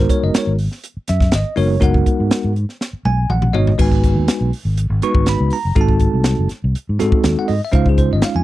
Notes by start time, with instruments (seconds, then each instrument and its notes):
Already playing: tine electric piano G#3 B3 D#4 F#4 A#4
0.09 tine electric piano C#5, kick, closed hi-hat
0.23 fingered electric bass F#1, tine electric piano D#5
0.34 tine electric piano C#5, muted fingered electric bass stroke, snare, closed hi-hat
0.47 fingered electric bass G#1
0.59 open hi-hat
0.72 snare
0.84 closed hi-hat
0.97 muted fingered electric bass stroke
1.08 fingered electric bass F#2, tine electric piano E5, snare, closed hi-hat
1.20 kick, snare
1.32 fingered electric bass G#1, tine electric piano D#5, snare, closed hi-hat
1.56 fingered electric bass F#1, tine electric piano G#3 B3 D#4 F#4 A#4 C#5, open hi-hat
1.80 fingered electric bass F#1, tine electric piano G#3 B3 D#4 F#4 A#4 F#5, kick, closed hi-hat
1.94 kick
2.06 kick, closed hi-hat
2.20 fingered electric bass G#2
2.31 snare, closed hi-hat
2.45 fingered electric bass G#2
2.56 closed hi-hat
2.69 snare
2.81 snare
2.93 muted fingered electric bass stroke
3.05 fingered electric bass B1, tine electric piano G#5, high tom
3.29 fingered electric bass A#1, tine electric piano F#5, mid tom
3.42 mid tom
3.53 fingered electric bass G#1, tine electric piano G#3 B3 D#4 F#4 C#5 D#5, floor tom
3.67 floor tom
3.78 fingered electric bass G#1, tine electric piano G#3 B3 D#4 F#4 B4 G#5, kick, crash
3.92 kick
4.04 kick, closed hi-hat
4.16 fingered electric bass D#2
4.28 snare, closed hi-hat
4.41 fingered electric bass B1
4.53 open hi-hat
4.65 fingered electric bass G#1
4.77 closed hi-hat
4.90 fingered electric bass G#1
5.02 tine electric piano G#3 B3 D#4 F#4 B4 C#6, closed hi-hat
5.15 fingered electric bass G#1, kick
5.26 tine electric piano B5, snare, closed hi-hat
5.40 fingered electric bass C#2
5.50 tine electric piano A#5, open hi-hat
5.65 fingered electric bass F#1
5.75 fingered electric bass G#1, tine electric piano G#3 C4 D#4 F#4 A4, kick, closed hi-hat
5.81 tine electric piano A5
5.89 kick
6.00 kick, closed hi-hat
6.14 fingered electric bass C2
6.24 snare, closed hi-hat
6.39 fingered electric bass F#1
6.49 muted fingered electric bass stroke, snare, closed hi-hat
6.64 fingered electric bass C2
6.75 muted fingered electric bass stroke, closed hi-hat
6.89 fingered electric bass G#2
6.99 fingered electric bass G#2, tine electric piano G#3 C4 D#4 F#4 A4, snare, closed hi-hat
7.12 kick
7.24 fingered electric bass D#2, snare, closed hi-hat
7.37 tine electric piano F#5, muted fingered electric bass stroke
7.48 fingered electric bass G#2, tine electric piano D#5, open hi-hat
7.65 tine electric piano E5
7.72 fingered electric bass C#2, tine electric piano G#3 C#4 D#4 F4 C5 F5, kick, closed hi-hat
7.86 tine electric piano G#4, kick
7.98 tine electric piano C5, kick, closed hi-hat
8.11 fingered electric bass G#1, tine electric piano D#5
8.22 tine electric piano F5, snare, closed hi-hat
8.35 fingered electric bass F2, tine electric piano G#5